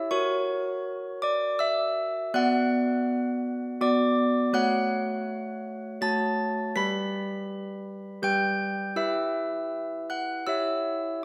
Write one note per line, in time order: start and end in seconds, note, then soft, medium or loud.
0.11 2.30 F#4 medium
0.11 2.30 A#4 medium
0.11 1.18 C#5 medium
0.11 1.18 C#6 loud
1.22 1.57 D5 medium
1.22 1.58 D6 loud
1.59 2.30 E5 medium
1.59 2.31 E6 loud
2.34 3.78 B3 medium
2.34 3.78 F#4 medium
2.34 3.78 D5 medium
2.34 3.79 F#5 loud
2.34 3.78 F#6 loud
3.81 4.52 B3 medium
3.81 4.52 F#4 medium
3.81 4.51 D5 medium
3.81 4.52 D6 loud
4.53 5.97 A3 medium
4.53 5.97 F#4 medium
4.53 5.97 C#5 medium
4.53 5.98 F#5 medium
4.53 5.97 F#6 loud
6.01 6.73 A3 medium
6.01 6.73 F#4 medium
6.01 6.73 C#5 medium
6.01 6.72 A5 medium
6.01 6.73 A6 loud
6.75 8.19 G3 medium
6.75 8.19 G4 soft
6.75 8.19 B4 medium
6.75 8.20 B5 medium
6.75 8.19 B6 loud
8.22 8.95 G3 medium
8.22 8.94 G4 medium
8.22 8.94 B4 soft
8.22 8.93 G5 medium
8.22 8.94 G6 loud
8.96 10.42 E4 medium
8.96 10.42 G4 medium
8.96 10.42 B4 soft
8.96 10.05 E5 medium
8.96 10.04 E6 medium
10.10 10.45 F#5 medium
10.10 10.45 F#6 medium
10.47 11.21 E4 medium
10.47 11.21 G4 soft
10.47 11.21 C#5 soft
10.47 11.20 E5 medium
10.47 11.20 E6 medium